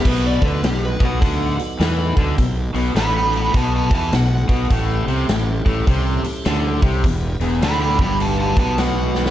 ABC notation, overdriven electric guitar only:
X:1
M:4/4
L:1/8
Q:"Swing" 1/4=103
K:Bdor
V:1 name="Overdriven electric guitar" clef=bass
B,, D, B,, B,, D, z E, D, | B,, B,, A,,2 B,, E, B,, B,, | A,, =C, A,, A,, C, z D, C, | E,, E,, D, =G,,2 B,,3 |]